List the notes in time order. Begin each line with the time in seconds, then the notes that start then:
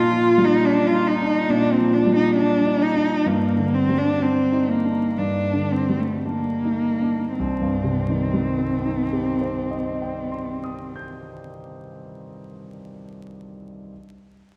Already playing: A#2 F4
0.10 F3
0.38 G3
0.44 D#4
0.65 D4
0.87 F4
0.94 D#4
1.08 D#4
1.22 D4
1.49 A#2 D4
1.72 C4
1.78 F3
1.93 D4
2.06 G3
2.16 D#4
2.36 D4
2.65 D#4
2.82 D#4
2.95 D4
3.26 G2 A#3
3.56 D3
3.74 C4
3.89 G3
3.98 D4
4.19 C4 D4
4.52 D#4
4.69 A#3
4.85 D4
5.18 G2 D4
5.53 D3
5.71 C4
5.89 G3
6.00 A3
6.26 A#3 D4
6.64 D#4
7.02 D4
7.39 C2 C4
7.62 G2
7.84 C3
8.09 D#3
8.33 G3
8.58 C4
8.86 D#4
9.13 G4
9.41 C5
9.71 D#5
10.02 G5
10.32 C6
10.64 D#6
10.96 G6